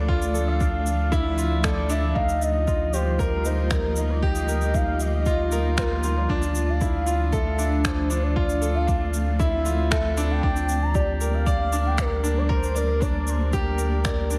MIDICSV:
0, 0, Header, 1, 6, 480
1, 0, Start_track
1, 0, Key_signature, -1, "minor"
1, 0, Tempo, 517241
1, 82, Time_signature, 4, 2, 24, 8
1, 13350, End_track
2, 0, Start_track
2, 0, Title_t, "Soft synth lead"
2, 0, Program_c, 0, 80
2, 0, Note_on_c, 0, 74, 106
2, 441, Note_on_c, 0, 77, 112
2, 454, Note_off_c, 0, 74, 0
2, 1052, Note_on_c, 0, 76, 107
2, 1066, Note_off_c, 0, 77, 0
2, 1524, Note_on_c, 0, 74, 100
2, 1538, Note_off_c, 0, 76, 0
2, 1763, Note_on_c, 0, 76, 96
2, 1776, Note_off_c, 0, 74, 0
2, 1989, Note_off_c, 0, 76, 0
2, 1995, Note_on_c, 0, 77, 106
2, 2244, Note_on_c, 0, 75, 110
2, 2258, Note_off_c, 0, 77, 0
2, 2718, Note_on_c, 0, 72, 99
2, 2731, Note_off_c, 0, 75, 0
2, 2959, Note_on_c, 0, 70, 95
2, 2973, Note_off_c, 0, 72, 0
2, 3206, Note_on_c, 0, 72, 97
2, 3220, Note_off_c, 0, 70, 0
2, 3447, Note_on_c, 0, 70, 93
2, 3460, Note_off_c, 0, 72, 0
2, 3803, Note_on_c, 0, 74, 99
2, 3817, Note_off_c, 0, 70, 0
2, 3912, Note_on_c, 0, 75, 106
2, 3926, Note_off_c, 0, 74, 0
2, 4401, Note_on_c, 0, 77, 104
2, 4415, Note_off_c, 0, 75, 0
2, 4647, Note_on_c, 0, 75, 114
2, 4661, Note_off_c, 0, 77, 0
2, 5364, Note_on_c, 0, 70, 93
2, 5378, Note_off_c, 0, 75, 0
2, 5719, Note_on_c, 0, 74, 102
2, 5733, Note_off_c, 0, 70, 0
2, 6208, Note_on_c, 0, 77, 123
2, 6222, Note_off_c, 0, 74, 0
2, 6793, Note_off_c, 0, 77, 0
2, 6799, Note_on_c, 0, 76, 110
2, 7284, Note_on_c, 0, 72, 97
2, 7298, Note_off_c, 0, 76, 0
2, 7639, Note_on_c, 0, 74, 111
2, 7653, Note_off_c, 0, 72, 0
2, 8117, Note_on_c, 0, 77, 113
2, 8131, Note_off_c, 0, 74, 0
2, 8719, Note_off_c, 0, 77, 0
2, 8727, Note_on_c, 0, 76, 108
2, 9171, Note_off_c, 0, 76, 0
2, 9205, Note_on_c, 0, 76, 102
2, 9569, Note_on_c, 0, 79, 116
2, 9583, Note_off_c, 0, 76, 0
2, 10043, Note_on_c, 0, 82, 109
2, 10057, Note_off_c, 0, 79, 0
2, 10160, Note_off_c, 0, 82, 0
2, 10165, Note_on_c, 0, 74, 101
2, 10523, Note_on_c, 0, 77, 108
2, 10537, Note_off_c, 0, 74, 0
2, 11009, Note_on_c, 0, 79, 109
2, 11023, Note_off_c, 0, 77, 0
2, 11130, Note_on_c, 0, 70, 95
2, 11144, Note_off_c, 0, 79, 0
2, 11488, Note_on_c, 0, 74, 102
2, 11502, Note_off_c, 0, 70, 0
2, 11599, Note_off_c, 0, 74, 0
2, 11605, Note_on_c, 0, 72, 107
2, 11848, Note_on_c, 0, 70, 108
2, 11862, Note_off_c, 0, 72, 0
2, 12078, Note_on_c, 0, 74, 104
2, 12092, Note_off_c, 0, 70, 0
2, 12330, Note_on_c, 0, 72, 96
2, 12344, Note_off_c, 0, 74, 0
2, 12569, Note_on_c, 0, 70, 104
2, 12583, Note_off_c, 0, 72, 0
2, 13043, Note_off_c, 0, 70, 0
2, 13049, Note_on_c, 0, 70, 98
2, 13350, Note_off_c, 0, 70, 0
2, 13350, End_track
3, 0, Start_track
3, 0, Title_t, "Grand piano"
3, 0, Program_c, 1, 0
3, 0, Control_c, 1, 64, 127
3, 0, Note_on_c, 1, 62, 70
3, 0, Note_on_c, 1, 64, 69
3, 0, Note_on_c, 1, 65, 71
3, 0, Note_on_c, 1, 69, 104
3, 79, Note_off_c, 1, 65, 0
3, 79, Note_on_c, 1, 65, 102
3, 309, Note_off_c, 1, 65, 0
3, 316, Note_off_c, 1, 69, 0
3, 316, Note_on_c, 1, 69, 73
3, 456, Note_off_c, 1, 69, 0
3, 560, Note_off_c, 1, 62, 0
3, 560, Note_on_c, 1, 62, 69
3, 789, Note_off_c, 1, 62, 0
3, 1038, Note_off_c, 1, 64, 0
3, 1038, Note_on_c, 1, 64, 108
3, 1268, Note_off_c, 1, 64, 0
3, 1278, Note_on_c, 1, 65, 73
3, 1508, Note_off_c, 1, 65, 0
3, 1518, Note_on_c, 1, 69, 97
3, 1657, Note_off_c, 1, 69, 0
3, 1759, Note_on_c, 1, 62, 93
3, 1989, Note_off_c, 1, 62, 0
3, 1997, Note_on_c, 1, 63, 98
3, 2014, Control_c, 1, 64, 0
3, 2150, Control_c, 1, 64, 127
3, 2227, Note_off_c, 1, 63, 0
3, 2481, Note_on_c, 1, 65, 70
3, 2709, Note_off_c, 1, 65, 0
3, 2726, Note_on_c, 1, 67, 69
3, 2952, Note_off_c, 1, 67, 0
3, 2961, Note_on_c, 1, 70, 102
3, 3190, Note_off_c, 1, 70, 0
3, 3205, Note_on_c, 1, 63, 71
3, 3432, Note_off_c, 1, 63, 0
3, 3684, Note_on_c, 1, 63, 71
3, 3820, Note_off_c, 1, 63, 0
3, 3921, Note_on_c, 1, 67, 107
3, 4149, Note_off_c, 1, 67, 0
3, 4159, Note_on_c, 1, 70, 70
3, 4297, Note_off_c, 1, 70, 0
3, 4401, Note_on_c, 1, 63, 68
3, 4630, Note_off_c, 1, 63, 0
3, 4885, Note_on_c, 1, 65, 98
3, 5111, Note_off_c, 1, 65, 0
3, 5124, Note_on_c, 1, 70, 96
3, 5351, Note_off_c, 1, 70, 0
3, 5364, Note_on_c, 1, 65, 74
3, 5500, Note_off_c, 1, 65, 0
3, 5608, Note_on_c, 1, 65, 74
3, 5833, Note_off_c, 1, 65, 0
3, 5845, Note_on_c, 1, 62, 96
3, 5854, Control_c, 1, 64, 0
3, 6042, Control_c, 1, 64, 127
3, 6071, Note_off_c, 1, 62, 0
3, 6319, Note_on_c, 1, 64, 68
3, 6549, Note_off_c, 1, 64, 0
3, 6557, Note_on_c, 1, 65, 71
3, 6788, Note_off_c, 1, 65, 0
3, 6797, Note_on_c, 1, 69, 97
3, 7028, Note_off_c, 1, 69, 0
3, 7040, Note_on_c, 1, 62, 76
3, 7269, Note_off_c, 1, 62, 0
3, 7517, Note_on_c, 1, 62, 72
3, 7656, Note_off_c, 1, 62, 0
3, 7759, Note_on_c, 1, 65, 101
3, 7989, Note_off_c, 1, 65, 0
3, 7993, Note_on_c, 1, 69, 76
3, 8134, Note_off_c, 1, 69, 0
3, 8233, Note_on_c, 1, 62, 73
3, 8466, Note_off_c, 1, 62, 0
3, 8719, Note_on_c, 1, 64, 98
3, 8948, Note_off_c, 1, 64, 0
3, 8958, Note_on_c, 1, 65, 76
3, 9188, Note_off_c, 1, 65, 0
3, 9195, Note_on_c, 1, 69, 103
3, 9336, Note_off_c, 1, 69, 0
3, 9441, Note_on_c, 1, 62, 101
3, 9666, Note_off_c, 1, 62, 0
3, 9680, Note_on_c, 1, 62, 101
3, 9692, Control_c, 1, 64, 0
3, 9837, Control_c, 1, 64, 127
3, 9909, Note_off_c, 1, 62, 0
3, 10159, Note_on_c, 1, 67, 74
3, 10389, Note_off_c, 1, 67, 0
3, 10399, Note_on_c, 1, 70, 72
3, 10629, Note_off_c, 1, 70, 0
3, 10639, Note_on_c, 1, 74, 100
3, 10869, Note_off_c, 1, 74, 0
3, 10881, Note_on_c, 1, 62, 75
3, 11110, Note_off_c, 1, 62, 0
3, 11355, Note_on_c, 1, 62, 73
3, 11495, Note_off_c, 1, 62, 0
3, 11591, Note_on_c, 1, 70, 106
3, 11825, Note_off_c, 1, 70, 0
3, 11829, Note_on_c, 1, 74, 72
3, 11972, Note_off_c, 1, 74, 0
3, 12068, Note_on_c, 1, 62, 76
3, 12303, Note_off_c, 1, 62, 0
3, 12557, Note_on_c, 1, 67, 103
3, 12788, Note_off_c, 1, 67, 0
3, 12791, Note_on_c, 1, 70, 72
3, 13025, Note_off_c, 1, 70, 0
3, 13040, Note_on_c, 1, 74, 81
3, 13269, Note_off_c, 1, 74, 0
3, 13275, Note_on_c, 1, 62, 67
3, 13350, Note_off_c, 1, 62, 0
3, 13350, End_track
4, 0, Start_track
4, 0, Title_t, "Ambient pad"
4, 0, Program_c, 2, 92
4, 0, Note_on_c, 2, 53, 71
4, 0, Note_on_c, 2, 57, 71
4, 0, Note_on_c, 2, 62, 77
4, 1964, Note_off_c, 2, 57, 0
4, 1966, Note_off_c, 2, 62, 0
4, 2008, Note_on_c, 2, 63, 75
4, 2012, Note_on_c, 2, 58, 74
4, 2013, Note_on_c, 2, 65, 90
4, 2014, Note_on_c, 2, 55, 74
4, 5808, Note_off_c, 2, 63, 0
4, 5810, Note_off_c, 2, 58, 0
4, 5811, Note_off_c, 2, 55, 0
4, 5840, Note_on_c, 2, 57, 72
4, 5842, Note_on_c, 2, 62, 72
4, 7743, Note_off_c, 2, 62, 0
4, 7752, Note_on_c, 2, 60, 71
4, 9644, Note_off_c, 2, 57, 0
4, 9645, Note_off_c, 2, 53, 0
4, 9651, Note_off_c, 2, 65, 0
4, 9658, Note_off_c, 2, 60, 0
4, 9664, Note_on_c, 2, 58, 80
4, 9669, Note_on_c, 2, 55, 83
4, 9669, Note_on_c, 2, 62, 93
4, 13350, Note_off_c, 2, 55, 0
4, 13350, Note_off_c, 2, 58, 0
4, 13350, Note_off_c, 2, 62, 0
4, 13350, End_track
5, 0, Start_track
5, 0, Title_t, "Sub bass"
5, 0, Program_c, 3, 38
5, 0, Note_on_c, 3, 38, 88
5, 1978, Note_off_c, 3, 38, 0
5, 2004, Note_on_c, 3, 38, 81
5, 5819, Note_off_c, 3, 38, 0
5, 5842, Note_on_c, 3, 38, 87
5, 9658, Note_off_c, 3, 38, 0
5, 9686, Note_on_c, 3, 38, 91
5, 13350, Note_off_c, 3, 38, 0
5, 13350, End_track
6, 0, Start_track
6, 0, Title_t, "Drums"
6, 81, Note_on_c, 9, 36, 94
6, 174, Note_off_c, 9, 36, 0
6, 204, Note_on_c, 9, 82, 43
6, 296, Note_off_c, 9, 82, 0
6, 325, Note_on_c, 9, 82, 61
6, 418, Note_off_c, 9, 82, 0
6, 562, Note_on_c, 9, 36, 96
6, 563, Note_on_c, 9, 82, 39
6, 655, Note_off_c, 9, 36, 0
6, 656, Note_off_c, 9, 82, 0
6, 804, Note_on_c, 9, 82, 66
6, 897, Note_off_c, 9, 82, 0
6, 1043, Note_on_c, 9, 36, 94
6, 1044, Note_on_c, 9, 82, 39
6, 1136, Note_off_c, 9, 36, 0
6, 1137, Note_off_c, 9, 82, 0
6, 1285, Note_on_c, 9, 82, 61
6, 1378, Note_off_c, 9, 82, 0
6, 1522, Note_on_c, 9, 26, 70
6, 1522, Note_on_c, 9, 82, 37
6, 1523, Note_on_c, 9, 36, 101
6, 1615, Note_off_c, 9, 26, 0
6, 1615, Note_off_c, 9, 82, 0
6, 1616, Note_off_c, 9, 36, 0
6, 1760, Note_on_c, 9, 82, 58
6, 1853, Note_off_c, 9, 82, 0
6, 2004, Note_on_c, 9, 36, 95
6, 2097, Note_off_c, 9, 36, 0
6, 2124, Note_on_c, 9, 82, 42
6, 2217, Note_off_c, 9, 82, 0
6, 2247, Note_on_c, 9, 82, 58
6, 2339, Note_off_c, 9, 82, 0
6, 2484, Note_on_c, 9, 36, 103
6, 2485, Note_on_c, 9, 82, 40
6, 2577, Note_off_c, 9, 36, 0
6, 2578, Note_off_c, 9, 82, 0
6, 2724, Note_on_c, 9, 82, 63
6, 2817, Note_off_c, 9, 82, 0
6, 2963, Note_on_c, 9, 36, 93
6, 2965, Note_on_c, 9, 82, 42
6, 3056, Note_off_c, 9, 36, 0
6, 3058, Note_off_c, 9, 82, 0
6, 3202, Note_on_c, 9, 82, 63
6, 3295, Note_off_c, 9, 82, 0
6, 3440, Note_on_c, 9, 26, 65
6, 3440, Note_on_c, 9, 82, 37
6, 3442, Note_on_c, 9, 36, 97
6, 3533, Note_off_c, 9, 26, 0
6, 3533, Note_off_c, 9, 82, 0
6, 3535, Note_off_c, 9, 36, 0
6, 3677, Note_on_c, 9, 82, 56
6, 3770, Note_off_c, 9, 82, 0
6, 3922, Note_on_c, 9, 36, 98
6, 4015, Note_off_c, 9, 36, 0
6, 4040, Note_on_c, 9, 82, 42
6, 4133, Note_off_c, 9, 82, 0
6, 4163, Note_on_c, 9, 82, 60
6, 4256, Note_off_c, 9, 82, 0
6, 4282, Note_on_c, 9, 82, 28
6, 4375, Note_off_c, 9, 82, 0
6, 4402, Note_on_c, 9, 36, 95
6, 4404, Note_on_c, 9, 82, 39
6, 4495, Note_off_c, 9, 36, 0
6, 4497, Note_off_c, 9, 82, 0
6, 4641, Note_on_c, 9, 82, 61
6, 4734, Note_off_c, 9, 82, 0
6, 4881, Note_on_c, 9, 82, 41
6, 4882, Note_on_c, 9, 36, 94
6, 4974, Note_off_c, 9, 82, 0
6, 4975, Note_off_c, 9, 36, 0
6, 5120, Note_on_c, 9, 82, 63
6, 5213, Note_off_c, 9, 82, 0
6, 5361, Note_on_c, 9, 26, 70
6, 5361, Note_on_c, 9, 82, 39
6, 5362, Note_on_c, 9, 36, 104
6, 5454, Note_off_c, 9, 26, 0
6, 5454, Note_off_c, 9, 82, 0
6, 5455, Note_off_c, 9, 36, 0
6, 5600, Note_on_c, 9, 82, 56
6, 5693, Note_off_c, 9, 82, 0
6, 5841, Note_on_c, 9, 36, 99
6, 5934, Note_off_c, 9, 36, 0
6, 5962, Note_on_c, 9, 82, 46
6, 6055, Note_off_c, 9, 82, 0
6, 6081, Note_on_c, 9, 82, 60
6, 6174, Note_off_c, 9, 82, 0
6, 6322, Note_on_c, 9, 82, 41
6, 6323, Note_on_c, 9, 36, 102
6, 6414, Note_off_c, 9, 82, 0
6, 6415, Note_off_c, 9, 36, 0
6, 6562, Note_on_c, 9, 82, 64
6, 6655, Note_off_c, 9, 82, 0
6, 6802, Note_on_c, 9, 82, 38
6, 6804, Note_on_c, 9, 36, 101
6, 6895, Note_off_c, 9, 82, 0
6, 6897, Note_off_c, 9, 36, 0
6, 7044, Note_on_c, 9, 82, 67
6, 7137, Note_off_c, 9, 82, 0
6, 7283, Note_on_c, 9, 26, 71
6, 7283, Note_on_c, 9, 82, 41
6, 7284, Note_on_c, 9, 36, 102
6, 7376, Note_off_c, 9, 26, 0
6, 7376, Note_off_c, 9, 82, 0
6, 7377, Note_off_c, 9, 36, 0
6, 7523, Note_on_c, 9, 82, 62
6, 7616, Note_off_c, 9, 82, 0
6, 7764, Note_on_c, 9, 36, 109
6, 7857, Note_off_c, 9, 36, 0
6, 7883, Note_on_c, 9, 82, 46
6, 7976, Note_off_c, 9, 82, 0
6, 8003, Note_on_c, 9, 82, 66
6, 8096, Note_off_c, 9, 82, 0
6, 8244, Note_on_c, 9, 36, 110
6, 8244, Note_on_c, 9, 82, 42
6, 8337, Note_off_c, 9, 36, 0
6, 8337, Note_off_c, 9, 82, 0
6, 8481, Note_on_c, 9, 82, 64
6, 8574, Note_off_c, 9, 82, 0
6, 8723, Note_on_c, 9, 36, 107
6, 8724, Note_on_c, 9, 82, 44
6, 8816, Note_off_c, 9, 36, 0
6, 8817, Note_off_c, 9, 82, 0
6, 8962, Note_on_c, 9, 82, 65
6, 9055, Note_off_c, 9, 82, 0
6, 9202, Note_on_c, 9, 26, 76
6, 9202, Note_on_c, 9, 82, 46
6, 9203, Note_on_c, 9, 36, 112
6, 9295, Note_off_c, 9, 26, 0
6, 9295, Note_off_c, 9, 82, 0
6, 9296, Note_off_c, 9, 36, 0
6, 9442, Note_on_c, 9, 82, 65
6, 9535, Note_off_c, 9, 82, 0
6, 9682, Note_on_c, 9, 36, 112
6, 9775, Note_off_c, 9, 36, 0
6, 9802, Note_on_c, 9, 82, 46
6, 9895, Note_off_c, 9, 82, 0
6, 9920, Note_on_c, 9, 82, 65
6, 10013, Note_off_c, 9, 82, 0
6, 10161, Note_on_c, 9, 36, 107
6, 10162, Note_on_c, 9, 82, 47
6, 10254, Note_off_c, 9, 36, 0
6, 10255, Note_off_c, 9, 82, 0
6, 10402, Note_on_c, 9, 82, 70
6, 10495, Note_off_c, 9, 82, 0
6, 10640, Note_on_c, 9, 36, 112
6, 10643, Note_on_c, 9, 82, 43
6, 10733, Note_off_c, 9, 36, 0
6, 10736, Note_off_c, 9, 82, 0
6, 10883, Note_on_c, 9, 82, 73
6, 10976, Note_off_c, 9, 82, 0
6, 11119, Note_on_c, 9, 26, 78
6, 11119, Note_on_c, 9, 82, 46
6, 11121, Note_on_c, 9, 36, 106
6, 11212, Note_off_c, 9, 26, 0
6, 11212, Note_off_c, 9, 82, 0
6, 11213, Note_off_c, 9, 36, 0
6, 11364, Note_on_c, 9, 82, 63
6, 11457, Note_off_c, 9, 82, 0
6, 11601, Note_on_c, 9, 36, 104
6, 11694, Note_off_c, 9, 36, 0
6, 11724, Note_on_c, 9, 82, 49
6, 11817, Note_off_c, 9, 82, 0
6, 11842, Note_on_c, 9, 82, 67
6, 11935, Note_off_c, 9, 82, 0
6, 12081, Note_on_c, 9, 36, 107
6, 12081, Note_on_c, 9, 82, 41
6, 12173, Note_off_c, 9, 36, 0
6, 12174, Note_off_c, 9, 82, 0
6, 12319, Note_on_c, 9, 82, 67
6, 12412, Note_off_c, 9, 82, 0
6, 12557, Note_on_c, 9, 82, 43
6, 12559, Note_on_c, 9, 36, 99
6, 12649, Note_off_c, 9, 82, 0
6, 12652, Note_off_c, 9, 36, 0
6, 12796, Note_on_c, 9, 82, 66
6, 12889, Note_off_c, 9, 82, 0
6, 13037, Note_on_c, 9, 26, 74
6, 13037, Note_on_c, 9, 82, 44
6, 13041, Note_on_c, 9, 36, 110
6, 13130, Note_off_c, 9, 26, 0
6, 13130, Note_off_c, 9, 82, 0
6, 13134, Note_off_c, 9, 36, 0
6, 13277, Note_on_c, 9, 82, 64
6, 13350, Note_off_c, 9, 82, 0
6, 13350, End_track
0, 0, End_of_file